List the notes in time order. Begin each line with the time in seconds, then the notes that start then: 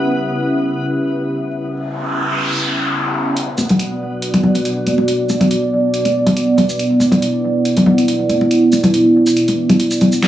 Already playing: B3 C#4 G4 B4 E5
1.65 noise sweep
3.36 B3 F#4 D5, closed hi-hat
3.58 muted conga, high conga, shaker
3.69 closed hi-hat, low conga
3.79 closed hi-hat
4.22 closed hi-hat
4.34 closed hi-hat, low conga
4.43 low conga
4.55 closed hi-hat, muted conga
4.65 closed hi-hat
4.87 closed hi-hat, high conga
4.98 muted conga
5.08 closed hi-hat
5.29 muted conga, shaker
5.41 closed hi-hat, low conga
5.51 closed hi-hat
5.94 closed hi-hat
6.05 closed hi-hat, muted conga
6.26 closed hi-hat, low conga
6.37 closed hi-hat
6.58 closed hi-hat, low conga
6.69 shaker
6.79 E4, closed hi-hat
7.00 muted conga, high conga, shaker
7.12 closed hi-hat, low conga
7.22 closed hi-hat
7.65 closed hi-hat
7.77 closed hi-hat, low conga
7.86 low conga
7.98 closed hi-hat, muted conga
8.08 closed hi-hat
8.29 closed hi-hat, high conga
8.41 muted conga
8.51 closed hi-hat
8.72 muted conga, shaker
8.84 closed hi-hat, low conga
8.94 closed hi-hat
9.27 shaker
9.37 closed hi-hat
9.48 closed hi-hat, muted conga
9.69 closed hi-hat, low conga
9.80 closed hi-hat
9.91 shaker
10.01 closed hi-hat, low conga
10.12 shaker
10.22 C#4 G4 E5, snare, closed hi-hat